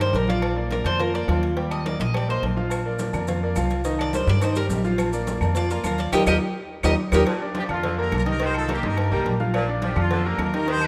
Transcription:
Already playing: upright bass G2
0.00 grand piano G3 G4 A#4, cuban tres C5
0.13 upright bass A#1, cuban tres A#4, cowbell, high conga, low agogo
0.28 grand piano F3 F4 F5, cuban tres D5, high conga
0.42 cowbell, low agogo, claves
0.56 grand piano A#3 A#4 D5, high conga
0.71 cuban tres A#4, cowbell, high conga, low agogo
0.84 upright bass F2, grand piano A#3 A#4 D5, cuban tres C5, high conga, low conga, low agogo, claves
0.99 grand piano F3 F4 F5, cuban tres A#4, cowbell, high conga, low conga, low agogo
1.14 grand piano A#3 A#4 D5, cuban tres D5, high conga
1.28 upright bass D#2, grand piano F3 F4 F5, cowbell, high conga, low timbale, low agogo, claves
1.43 cowbell, high conga, low agogo
1.56 grand piano G3 G4 G5, cowbell, high conga
1.71 cuban tres D#5, high conga, low agogo, claves
1.85 grand piano A#3 A#4 D#5, cuban tres D5, cowbell, high conga, low agogo
1.99 upright bass A#1, cuban tres D#5, high conga
2.14 grand piano G3 G4 G5, cuban tres D5, cowbell, high conga, low agogo, claves
2.28 grand piano A#3 A#4 D#5, cuban tres C5, high conga
2.42 upright bass A#1, cowbell, high conga, low agogo
2.57 grand piano F3 F4 F5, high conga
2.70 cowbell, high conga, low agogo, claves, maracas
2.85 grand piano A#3 A#4 D5, high conga
2.99 cowbell, high conga, low agogo, maracas
3.13 upright bass F2, grand piano A#3 A#4 D5, high conga, low conga, low agogo, claves, maracas
3.27 grand piano F3 F4 F5, cowbell, high conga, low conga, low agogo, maracas
3.42 grand piano A#3 A#4 D5, high conga
3.56 upright bass C2, grand piano F3 F4 F5, cowbell, high conga, low agogo, claves, maracas
3.70 cowbell, high conga, low agogo, maracas
3.84 grand piano D#3 D#4 D#5, cowbell, maracas
3.99 cuban tres D5, high conga, low agogo, claves
4.13 grand piano G3 G4 A#4, cuban tres C5, cowbell, high conga, low agogo, maracas
4.27 upright bass G2, cuban tres D5, high conga, maracas
4.41 grand piano D#3 D#4 D#5, cuban tres C5, cowbell, high conga, low agogo, claves, maracas
4.55 grand piano G3 G4 A#4, cuban tres A#4, high conga, maracas
4.69 upright bass A#1, cowbell, high conga, low timbale, low agogo, maracas
4.84 grand piano F3 F4 F5, high conga, maracas
4.98 cowbell, high conga, low agogo, claves, maracas
5.13 grand piano A#3 A#4 D5, high conga, maracas
5.27 cowbell, high conga, low agogo, maracas
5.41 upright bass F2, grand piano A#3 A#4 D5, high conga, low conga, low agogo, claves, maracas
5.55 grand piano F3 F4 F5, cuban tres D5, cowbell, high conga, low agogo, maracas
5.70 grand piano A#3 A#4 D5, cuban tres F4, high conga, maracas
5.84 upright bass D#2, grand piano F3 F4 F5, cuban tres A#4, cowbell, high conga, low agogo, claves, maracas
5.98 cuban tres D5, cowbell, high conga, low agogo, maracas
6.12 upright bass D#2, grand piano D#4 G4 A#4, cuban tres G4 A#4 D#5, cowbell, high conga, high timbale, claves, maracas
6.27 upright bass D#2, grand piano D#4 G4 A#4, cuban tres G4 A#4 D#5, cowbell, high conga, high timbale, claves, maracas
6.83 upright bass D#2, grand piano D#4 G4 A#4, cuban tres G4 A#4 D#5, cowbell, high conga, high timbale, claves, maracas
7.12 upright bass D#2, grand piano D#4 G4 A#4, cuban tres G4 A#4 D#5, cowbell, high conga, high timbale, claves, maracas
7.26 saxophone section A#2, cowbell, high conga, low agogo, claves
7.42 grand piano D4 D5 D6
7.54 saxophone section F3, horn section D4 G4, cowbell, high conga, low agogo
7.69 upright bass F2, horn section D4 F4, grand piano F4 F5 F6, high conga, low conga, low agogo, claves
7.83 saxophone section D3, cowbell, high conga, low conga, low agogo
7.98 grand piano A#3 A#4 A#5, horn section G4 A#4, high conga
8.12 upright bass C2, horn section F4, cowbell, high conga, low agogo, claves
8.16 horn section A#4
8.26 grand piano D#3 D#4 D#5, horn section G4, cowbell, high conga, low agogo
8.30 horn section A#4
8.40 grand piano D#3 D#4 D#5, saxophone section D#3, horn section G4, cowbell, high conga
8.44 horn section C5
8.54 horn section F4 A4, high conga, low agogo, claves
8.68 saxophone section A#3, grand piano A#3 A#4 A#5, horn section D#4 G4, cowbell, high conga, low agogo
8.83 upright bass G2, grand piano D#4 D#5 D#6, horn section G4 A#4, high conga
8.97 horn section G4 A#4, cowbell, high conga, low agogo, claves
9.11 upright bass C2, saxophone section G3, grand piano A#3 A#4 A#5, high conga
9.26 upright bass A#1, cowbell, high conga, low agogo
9.40 grand piano F4 F5 F6, high conga
9.54 saxophone section A#2, cowbell, low agogo, claves
9.68 grand piano D4 D5 D6, high conga
9.82 saxophone section F3, horn section D4 G4, cowbell, high conga, low agogo
9.96 upright bass F2, horn section D4 F4, grand piano F4 F5 F6, high conga, low conga, low agogo, claves
10.10 saxophone section D3, cowbell, high conga, low conga, low agogo
10.25 grand piano A#3 A#4 A#5, horn section G4 A#4, high conga
10.38 upright bass D#2, horn section F4 A#4, cowbell, high conga, low timbale, low agogo, claves
10.53 grand piano D#3 D#4 D#5, horn section G4 A#4, cowbell, low agogo
10.66 saxophone section D#3, grand piano D#3 D#4 D#5, horn section G4 C5, cowbell
10.80 high conga, low agogo, claves

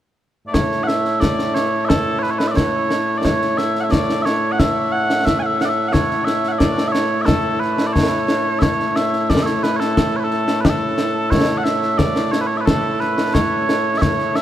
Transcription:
0.47 bagpipes A2 A3 D5
0.54 bagpipes C#5, concert bass drum, snare
0.72 snare
0.84 bagpipes E5 F#5
0.88 snare
1.05 snare
1.20 bagpipes D5, concert bass drum, snare
1.39 snare
1.55 bagpipes C#5, snare
1.85 bagpipes A4 E5
1.90 concert bass drum, snare
2.19 bagpipes B4 C#5
2.24 snare
2.30 bagpipes C#5
2.38 bagpipes B4, snare
2.48 bagpipes D5 E5
2.56 bagpipes C#5, concert bass drum, snare
2.91 snare
3.18 bagpipes D5
3.25 bagpipes C#5, concert bass drum, snare
3.42 snare
3.58 bagpipes E5, snare
3.76 snare
3.80 bagpipes E5 F#5
3.91 bagpipes D5, concert bass drum, snare
4.10 snare
4.22 bagpipes C#5 E5
4.26 snare
4.52 bagpipes F#5
4.59 bagpipes E5, concert bass drum, snare
4.92 bagpipes F#5
5.10 snare
5.25 bagpipes E5, concert bass drum, snare
5.39 bagpipes F#5 G#5
5.46 bagpipes E5
5.61 bagpipes F#5, snare
5.65 bagpipes D5 E5
5.88 bagpipes F#5
5.93 bagpipes C#5, concert bass drum, snare
6.11 snare
6.25 bagpipes E5, snare
6.44 snare
6.48 bagpipes E5 F#5
6.58 bagpipes D5, concert bass drum, snare
6.78 snare
6.88 bagpipes E5
6.92 bagpipes C#5, snare
7.22 bagpipes A4 E5
7.28 concert bass drum, snare
7.60 bagpipes B4, snare
7.78 snare
7.87 bagpipes D5
7.93 bagpipes C#5, concert bass drum, snare
8.28 snare
8.59 bagpipes C#5 E5, concert bass drum, snare
8.80 snare
8.96 bagpipes E5, snare
9.13 snare
9.30 bagpipes D5, concert bass drum, snare
9.43 bagpipes C#5 E5, snare
9.63 bagpipes B4, snare
9.76 bagpipes A4 C#5
9.81 snare
9.97 concert bass drum, snare
10.16 bagpipes B4 C#5
10.24 bagpipes A4
10.31 snare
10.48 snare
10.61 bagpipes B4, concert bass drum, snare
10.65 bagpipes G4
10.69 bagpipes A4
10.98 snare
11.30 bagpipes C#5, concert bass drum, snare
11.49 snare
11.58 bagpipes F#5
11.64 bagpipes E5, snare
11.83 snare
11.98 bagpipes D5, concert bass drum, snare
12.16 snare
12.32 bagpipes C#5, snare
12.41 bagpipes B4
12.46 bagpipes C#5
12.57 bagpipes B4 E5
12.66 bagpipes A4, concert bass drum, snare
13.00 bagpipes B4, snare
13.18 snare
13.34 bagpipes C#5, concert bass drum, snare
13.69 snare
13.98 bagpipes C#5 E5
14.02 concert bass drum, snare
14.19 snare
14.36 bagpipes E5, snare

